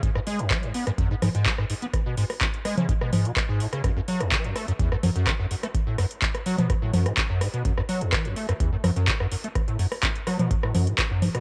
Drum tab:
HH |x-oxxxoxx-oxx-ox|x-ooxxoxx-oxx-ox|x-oxxxoxx-oxx-ox|x-oxxxoxx-oxx-ox|
CP |----x-------x---|----x-------x---|----x-------x---|----x-------x---|
SD |-r--r--r--r--r--|r--r--r--r--r--r|r--r--r--r--r--r|--r--r--r--r--r-|
CG |----------O-----|-------O--O-----|----------O-----|-------O--O-----|
BD |o---o---o---o---|o---o---o---o---|o---o---o---o---|o---o---o---o---|

HH |x-oxxxoxx-oxx-ox|xxooxxoxx-oxx-ox|
CP |----x-------x---|----x-------x---|
SD |-r--r--r--r--r--|r--r--r--r--r--r|
CG |----------O-----|-------O--O---O-|
BD |o---o---o---o---|o---o---o---o---|